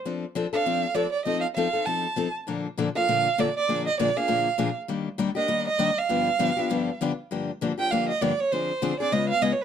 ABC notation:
X:1
M:4/4
L:1/8
Q:"Swing" 1/4=198
K:Fmix
V:1 name="Violin"
z3 f3 d d | e f f2 a3 z | z3 f3 d d- | d e d f4 z |
z3 e2 e2 f- | f6 z2 | [K:Gm] z3 g f e d ^c | c3 d e ^e (3_e ^c =B |]
V:2 name="Steel-string acoustic guitar"
[F,CDA] z [F,CDA] [CDA] [F,CDA] z [F,CDA] z | [F,CEA] z [F,CEA] [CEA] [F,CEA] z [F,CEA] z | [B,,D,F,B,DA] z [B,,D,F,B,DA] [F,B,DA] [B,,D,F,B,DA] z [B,,D,F,B,DA] z | [B,,D,F,B,D_A] z [B,,D,F,B,DA] [F,B,DA] [B,,D,F,B,DA] z [B,,D,F,B,DA] z |
[E,G,B,DG] z [E,G,B,DG] [B,DG] [E,G,B,DG] z [E,G,B,DG] z | [G,,D,F,=B,DG] z [G,,D,F,B,DG] [F,B,DG] [G,,D,F,B,DG] z [G,,D,F,B,DG] z | [K:Gm] [G,,D,F,B,DG] z [G,,D,F,B,DG] [F,B,DG] [G,,D,F,B,DG] z [G,,D,F,B,DG] z | [D,F,CD_A] z [D,F,CDA] [CDA] [^C,^G,=B,^E^G] z [C,G,B,EG] z |]